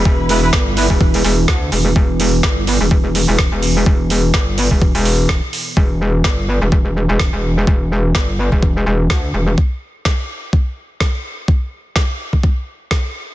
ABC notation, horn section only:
X:1
M:4/4
L:1/16
Q:"Swing 16ths" 1/4=126
K:Em
V:1 name="Horn section"
z2 [B,EB] [B,EB] z2 [B,EB] z8 z | z16 | z16 | z16 |
z16 | z16 | z16 |]